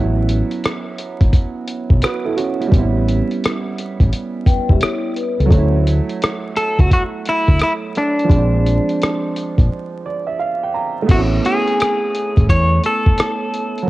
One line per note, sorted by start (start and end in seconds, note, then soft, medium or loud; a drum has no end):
0.00 0.41 A1 loud
0.00 2.65 F#3 medium
0.00 1.97 B3 medium
0.00 1.99 C#4 medium
0.00 2.01 E4 medium
0.29 closed hi-hat medium
0.51 closed hi-hat soft
0.64 cross-stick medium
0.64 closed hi-hat medium
0.98 closed hi-hat medium
1.21 1.31 G#1 medium
1.21 kick medium
1.21 closed hi-hat soft
1.33 kick medium
1.33 closed hi-hat medium
1.68 closed hi-hat medium
1.90 2.00 B1 medium
1.90 kick medium
2.02 2.24 F#4 soft
2.02 2.24 B4 medium
2.02 cross-stick loud
2.02 closed hi-hat medium
2.25 2.37 E4 medium
2.25 2.36 A4 medium
2.37 2.59 C#4 medium
2.37 2.58 F#4 medium
2.37 closed hi-hat medium
2.60 2.69 B3 soft
2.60 2.77 E4 medium
2.60 closed hi-hat soft
2.67 5.44 G3 medium
2.67 5.46 B3 medium
2.72 3.20 A1 medium
2.72 2.82 C4 medium
2.72 kick loud
2.72 closed hi-hat medium
2.78 5.52 C#4 medium
2.78 5.50 E4 medium
3.08 closed hi-hat medium
3.31 closed hi-hat soft
3.44 cross-stick medium
3.44 closed hi-hat medium
3.78 closed hi-hat medium
4.00 4.10 A1 medium
4.00 kick medium
4.00 closed hi-hat soft
4.13 closed hi-hat medium
4.46 4.68 B4 medium
4.46 4.68 G5 medium
4.46 kick medium
4.46 closed hi-hat medium
4.69 4.79 E1 medium
4.69 4.80 G4 medium
4.69 4.80 E5 medium
4.69 kick medium
4.81 5.15 E4 medium
4.81 5.14 C#5 medium
4.81 cross-stick loud
4.81 closed hi-hat medium
5.16 5.37 B4 medium
5.16 closed hi-hat medium
5.39 5.49 C#2 medium
5.39 5.72 C#4 medium
5.39 5.72 A4 medium
5.39 closed hi-hat soft
5.46 8.23 F#3 medium
5.46 8.25 A3 medium
5.51 5.99 D2 loud
5.51 8.27 C#5 medium
5.51 kick loud
5.51 closed hi-hat medium
5.57 8.29 E4 medium
5.87 closed hi-hat medium
6.09 closed hi-hat soft
6.22 cross-stick loud
6.22 closed hi-hat medium
6.56 6.80 A4 loud
6.56 closed hi-hat medium
6.79 6.89 C#2 medium
6.79 6.92 F#4 loud
6.79 kick medium
6.79 closed hi-hat soft
6.91 7.02 F#4 medium
6.91 kick medium
6.91 closed hi-hat medium
7.25 7.62 E4 loud
7.25 closed hi-hat medium
7.48 7.58 D2 medium
7.48 kick medium
7.59 7.72 E4 loud
7.59 cross-stick medium
7.59 closed hi-hat medium
7.95 10.71 D4 medium
7.95 closed hi-hat medium
8.19 closed hi-hat soft
8.24 11.02 F3 medium
8.24 11.04 G#3 medium
8.30 8.78 A#1 medium
8.30 11.06 C4 medium
8.30 kick loud
8.30 closed hi-hat medium
8.36 11.08 D4 medium
8.66 closed hi-hat medium
8.89 closed hi-hat soft
9.02 cross-stick medium
9.02 closed hi-hat medium
9.36 closed hi-hat medium
9.58 9.68 A#1 medium
9.58 kick medium
9.58 closed hi-hat soft
10.06 10.26 D5 medium
10.27 10.38 E5 medium
10.39 10.60 F5 medium
10.63 10.74 G5 medium
10.74 11.06 A#5 medium
11.02 13.81 A3 medium
11.06 11.38 A1 medium
11.06 13.83 B3 medium
11.06 11.18 C4 medium
11.06 kick medium
11.06 closed hi-hat medium
11.06 crash medium
11.11 13.86 E4 medium
11.11 11.20 F#4 medium
11.16 13.88 C#4 medium
11.45 12.49 G#4 medium
11.45 closed hi-hat medium
11.68 closed hi-hat soft
11.80 cross-stick medium
11.80 closed hi-hat medium
12.15 closed hi-hat medium
12.37 12.47 A1 medium
12.37 kick medium
12.37 closed hi-hat soft
12.49 12.78 E2 loud
12.49 12.82 C#5 loud
12.49 kick medium
12.49 closed hi-hat medium
12.84 13.89 A4 loud
12.84 closed hi-hat medium
13.06 kick medium
13.18 cross-stick loud
13.18 closed hi-hat medium
13.54 closed hi-hat medium
13.78 closed hi-hat soft
13.83 13.89 F#3 medium
13.83 13.89 A#3 medium